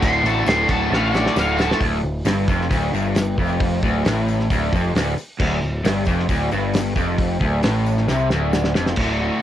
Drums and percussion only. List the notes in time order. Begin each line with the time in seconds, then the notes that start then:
0.03 kick, tambourine, crash
0.26 tambourine, crash
0.47 snare, tambourine, crash
0.69 kick, tambourine, crash
0.92 snare, tambourine
1.14 snare, tambourine
1.26 snare
1.36 snare, tambourine
1.58 snare, tambourine
1.71 snare
1.81 kick, open hi-hat
2.05 tambourine
2.25 snare, open hi-hat, tambourine
2.48 kick, tambourine
2.61 snare
2.71 kick, open hi-hat, tambourine
2.94 tambourine
3.15 snare, open hi-hat, tambourine
3.38 kick, tambourine
3.60 kick, open hi-hat
3.83 kick, tambourine
4.05 snare, open hi-hat, tambourine
4.28 tambourine
4.40 snare
4.50 kick, open hi-hat, tambourine
4.73 kick, tambourine
4.95 snare, open hi-hat, tambourine
5.18 tambourine
5.40 kick, crash
5.62 tambourine
5.85 snare, open hi-hat, tambourine
6.05 kick, tambourine
6.19 snare
6.29 kick, open hi-hat, tambourine
6.51 tambourine
6.74 snare, open hi-hat, tambourine
6.96 kick, tambourine
7.18 kick, open hi-hat, tambourine
7.41 kick, tambourine
7.63 snare, open hi-hat, tambourine
7.86 tambourine
7.97 snare
8.08 snare, tambourine
8.30 snare, tambourine
8.53 snare, tambourine
8.64 snare
8.75 snare, tambourine
8.86 snare
8.96 kick, crash